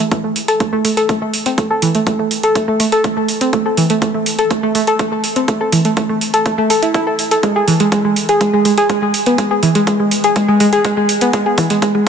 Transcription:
0.11 0.21 A3 medium
0.11 kick loud
0.11 closed hi-hat medium
0.24 0.33 A3 medium
0.36 open hi-hat loud
0.48 0.60 A4 loud
0.48 closed hi-hat medium
0.60 0.70 A3 medium
0.60 kick loud
0.60 closed hi-hat medium
0.73 0.84 A3 loud
0.85 0.91 A3 loud
0.85 open hi-hat loud
0.97 1.07 A4 loud
0.97 closed hi-hat medium
1.09 1.19 A3 medium
1.09 kick loud
1.09 closed hi-hat medium
1.22 1.31 A3 medium
1.34 open hi-hat loud
1.46 1.55 C4 medium
1.46 closed hi-hat medium
1.58 1.68 A3 medium
1.58 kick loud
1.58 closed hi-hat medium
1.70 1.82 A4 medium
1.82 1.88 E3 loud
1.82 open hi-hat loud
1.95 2.00 A3 medium
1.95 closed hi-hat medium
2.07 2.17 A3 medium
2.07 kick loud
2.07 closed hi-hat medium
2.19 2.29 A3 medium
2.31 open hi-hat loud
2.43 2.55 A4 loud
2.43 closed hi-hat medium
2.55 2.65 A3 medium
2.55 kick loud
2.55 closed hi-hat medium
2.68 2.79 A3 loud
2.80 2.86 A3 loud
2.80 open hi-hat loud
2.92 3.02 A4 loud
2.92 closed hi-hat medium
3.04 3.14 A3 medium
3.04 kick loud
3.04 closed hi-hat medium
3.17 3.26 A3 medium
3.29 open hi-hat loud
3.41 3.51 C4 medium
3.41 closed hi-hat medium
3.53 3.63 A3 medium
3.53 kick loud
3.53 closed hi-hat medium
3.66 3.77 A4 medium
3.77 3.83 E3 loud
3.77 open hi-hat loud
3.90 3.96 A3 medium
3.90 closed hi-hat medium
4.02 4.12 A3 medium
4.02 kick loud
4.02 closed hi-hat medium
4.14 4.24 A3 medium
4.26 open hi-hat loud
4.39 4.50 A4 loud
4.39 closed hi-hat medium
4.51 4.60 A3 medium
4.51 kick loud
4.51 closed hi-hat medium
4.63 4.74 A3 loud
4.75 4.81 A3 loud
4.75 open hi-hat loud
4.87 4.97 A4 loud
4.87 closed hi-hat medium
4.99 5.09 A3 medium
4.99 kick loud
4.99 closed hi-hat medium
5.12 5.21 A3 medium
5.24 open hi-hat loud
5.36 5.46 C4 medium
5.36 closed hi-hat medium
5.48 5.58 A3 medium
5.48 kick loud
5.48 closed hi-hat medium
5.61 5.72 A4 medium
5.72 5.78 E3 loud
5.72 open hi-hat loud
5.85 5.91 A3 medium
5.85 closed hi-hat medium
5.97 6.07 A3 medium
5.97 kick loud
5.97 closed hi-hat medium
6.09 6.19 A3 medium
6.21 open hi-hat loud
6.34 6.45 A4 loud
6.34 closed hi-hat medium
6.46 6.56 A3 medium
6.46 kick loud
6.46 closed hi-hat medium
6.58 6.69 A3 loud
6.70 6.80 A4 medium
6.70 open hi-hat loud
6.82 6.93 E4 medium
6.82 closed hi-hat medium
6.94 7.06 E4 loud
6.94 kick loud
6.94 closed hi-hat medium
7.07 7.16 A4 medium
7.19 open hi-hat loud
7.31 7.41 A4 medium
7.31 closed hi-hat medium
7.43 7.53 G#3 medium
7.43 kick loud
7.43 closed hi-hat medium
7.56 7.67 G#4 medium
7.68 7.74 E3 loud
7.68 open hi-hat loud
7.80 7.86 G#3 medium
7.80 closed hi-hat medium
7.92 8.02 G#3 medium
7.92 kick loud
7.92 closed hi-hat soft
8.05 8.14 G#3 medium
8.16 open hi-hat loud
8.29 8.40 G#4 loud
8.29 closed hi-hat medium
8.41 8.51 G#3 medium
8.41 kick loud
8.41 closed hi-hat medium
8.53 8.64 G#3 loud
8.65 8.71 G#3 loud
8.65 open hi-hat loud
8.78 8.87 G#4 loud
8.78 closed hi-hat medium
8.90 8.99 G#3 medium
8.90 kick loud
8.90 closed hi-hat medium
9.02 9.12 G#3 medium
9.14 open hi-hat loud
9.26 9.36 B3 medium
9.26 closed hi-hat medium
9.38 9.48 G#3 medium
9.38 kick loud
9.38 closed hi-hat medium
9.51 9.62 G#4 medium
9.63 9.69 E3 loud
9.63 open hi-hat loud
9.75 9.81 G#3 medium
9.75 closed hi-hat medium
9.87 9.97 G#3 medium
9.87 kick loud
9.87 closed hi-hat medium
10.00 10.09 G#3 medium
10.11 open hi-hat loud
10.24 10.35 G#4 loud
10.24 closed hi-hat medium
10.36 10.46 G#3 medium
10.36 kick medium
10.36 closed hi-hat medium
10.48 10.59 G#3 loud
10.60 10.66 G#3 loud
10.60 open hi-hat loud
10.73 10.82 G#4 loud
10.73 closed hi-hat soft
10.85 10.95 G#3 medium
10.85 kick loud
10.85 closed hi-hat medium
10.97 11.07 G#3 medium
11.09 open hi-hat loud
11.21 11.31 B3 medium
11.21 closed hi-hat medium
11.33 11.43 G#3 medium
11.33 kick loud
11.33 closed hi-hat medium
11.46 11.57 G#4 medium
11.58 11.64 E3 loud
11.58 kick loud
11.58 open hi-hat loud
11.70 11.76 G#3 medium
11.70 closed hi-hat medium
11.82 11.92 G#3 medium
11.82 kick loud
11.82 closed hi-hat medium
11.95 12.04 G#3 medium

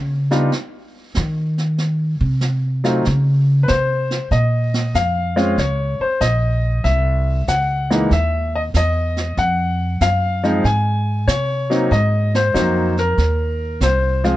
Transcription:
0.00 0.48 C#3 medium
0.31 0.49 G3 medium
0.31 0.49 B3 medium
0.31 0.49 D4 medium
0.31 0.49 D#4 medium
0.31 0.50 F4 medium
0.31 snare soft
0.52 brush sweep soft
0.52 snare soft
1.15 2.17 D#3 medium
1.15 snare medium
1.58 snare soft
1.78 brush sweep soft
1.78 snare soft
2.21 3.00 C3 medium
2.41 snare medium
2.84 3.02 F#3 medium
2.84 3.02 A3 medium
2.84 3.02 C4 medium
2.84 3.02 D#4 medium
2.84 3.02 F4 medium
2.84 snare soft
3.05 3.64 C#3 loud
3.05 brush sweep medium
3.05 snare soft
3.63 3.67 B4 medium
3.68 4.18 C3 medium
3.68 4.27 C5 medium
3.68 snare medium
4.11 snare soft
4.31 4.92 A#2 medium
4.31 4.96 D#5 medium
4.31 brush sweep soft
4.31 kick soft
4.31 snare soft
4.74 snare medium
4.94 5.55 F2 medium
4.94 5.60 F5 medium
4.94 kick soft
4.94 snare medium
4.94 hi-hat pedal medium
5.36 5.55 G#3 medium
5.36 5.55 C4 medium
5.36 5.55 C#4 medium
5.36 5.55 F4 medium
5.36 snare soft
5.58 5.97 C#2 medium
5.58 6.02 C#5 medium
5.58 brush sweep soft
5.58 kick soft
5.58 snare soft
6.00 6.22 C5 medium
6.00 muted upright bass stroke soft
6.21 6.82 A#1 medium
6.21 6.86 D#5 medium
6.21 kick soft
6.21 snare medium
6.21 hi-hat pedal medium
6.84 7.45 C2 medium
6.84 7.43 E5 medium
6.84 brush sweep soft
6.84 kick soft
6.84 snare soft
7.48 8.09 C#2 medium
7.48 8.13 F#5 medium
7.48 kick soft
7.48 snare medium
7.48 hi-hat pedal soft
7.91 8.09 E3 medium
7.91 8.09 G#3 medium
7.91 8.09 A#3 medium
7.91 8.09 D#4 medium
7.91 snare soft
8.11 8.72 D#2 medium
8.11 8.51 E5 medium
8.11 brush sweep soft
8.11 kick soft
8.11 snare soft
8.55 8.60 D#5 medium
8.74 9.35 E2 medium
8.74 9.34 D#5 medium
8.74 kick soft
8.74 snare medium
8.74 hi-hat pedal medium
9.17 snare soft
9.37 9.99 F2 medium
9.37 10.03 F#5 medium
9.37 brush sweep soft
9.37 kick soft
9.37 snare soft
10.01 10.62 F#2 medium
10.01 10.66 F5 medium
10.01 kick soft
10.01 snare medium
10.01 hi-hat pedal medium
10.43 10.62 F3 medium
10.43 10.62 G#3 medium
10.43 10.62 C4 medium
10.43 10.62 D#4 medium
10.43 snare soft
10.64 11.25 G#2 medium
10.64 11.30 G#5 medium
10.64 brush sweep soft
10.64 kick soft
10.64 snare soft
11.27 11.89 C3 medium
11.27 11.93 C#5 medium
11.27 kick soft
11.27 snare medium
11.27 hi-hat pedal medium
11.70 11.88 F#3 medium
11.70 11.89 A#3 medium
11.70 11.89 C4 medium
11.70 11.89 D#4 medium
11.70 snare soft
11.91 12.52 G#2 medium
11.91 12.31 D#5 medium
11.91 brush sweep soft
11.91 kick soft
11.91 snare soft
12.35 12.54 C5 medium
12.35 snare medium
12.54 13.16 F2 medium
12.54 12.92 F#3 medium
12.54 12.92 A#3 medium
12.54 12.93 C4 medium
12.54 12.92 D#4 medium
12.54 12.99 C5 medium
12.54 kick soft
12.54 snare medium
12.54 hi-hat pedal soft
12.97 13.78 A#4 medium
12.97 snare soft
13.18 13.79 D#2 medium
13.18 brush sweep soft
13.18 kick soft
13.18 snare soft
13.81 14.37 C2 medium
13.81 14.37 C5 medium
13.81 kick soft
13.81 snare medium
13.81 hi-hat pedal medium
14.24 14.37 F3 medium
14.24 14.37 G#3 medium
14.24 14.37 C4 medium
14.24 14.37 F4 medium
14.24 snare soft

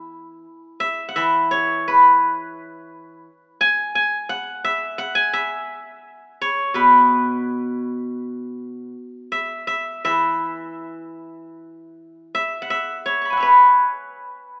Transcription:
0.00 0.44 E3 medium
0.00 1.76 E4 soft
0.00 0.14 G#4 medium
0.80 1.15 E5 medium
1.09 2.69 F#5 medium
1.16 3.26 E3 medium
1.16 2.88 E5 medium
1.51 3.42 C#5 medium
1.88 3.92 B4 medium
3.61 3.95 G#5 medium
3.95 5.15 G#5 medium
4.29 4.98 F#5 medium
4.64 5.33 E5 medium
4.98 6.59 F#5 medium
5.15 6.65 G#5 medium
5.33 7.06 E5 medium
6.41 8.32 C#5 medium
6.74 8.92 B2 medium
6.74 8.80 B4 medium
9.32 9.67 E5 medium
9.67 10.04 E5 medium
10.05 12.31 E3 soft
10.05 11.77 E5 medium
12.35 12.70 E5 medium
12.62 13.32 F#5 medium
12.70 13.37 E5 medium
13.06 13.40 C#5 medium
13.22 14.60 B5 soft
13.22 14.47 C#6 soft
13.30 14.60 F#5 soft
13.30 14.60 G#5 soft
13.37 14.60 C#5 soft
13.37 14.60 E5 soft
13.43 14.60 B4 medium

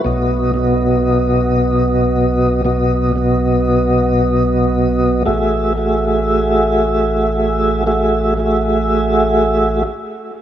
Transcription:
0.04 5.23 B1 medium
0.04 0.51 B2 medium
0.04 0.51 B3 medium
0.04 0.51 F#4 medium
0.04 0.52 D#5 medium
0.54 2.61 B2 medium
0.54 2.62 B3 medium
0.54 2.62 F#4 medium
0.54 2.62 D#5 medium
2.65 3.12 B2 medium
2.65 3.12 B3 medium
2.65 3.12 F#4 medium
2.65 3.12 D#5 medium
3.16 5.22 B2 medium
3.16 5.23 B3 medium
3.16 5.23 F#4 medium
3.16 5.23 D#5 medium
5.26 9.83 A1 medium
5.26 5.73 A3 medium
5.26 5.73 F#4 medium
5.26 5.73 G#4 medium
5.26 5.73 E5 medium
5.77 7.83 A3 medium
5.77 7.84 F#4 medium
5.77 7.84 G#4 medium
5.77 7.84 E5 medium
7.86 8.34 A3 medium
7.86 8.34 F#4 medium
7.86 8.34 G#4 medium
7.86 8.34 E5 medium
8.37 9.82 A3 medium
8.37 9.82 F#4 medium
8.37 9.83 G#4 medium
8.37 9.83 E5 medium

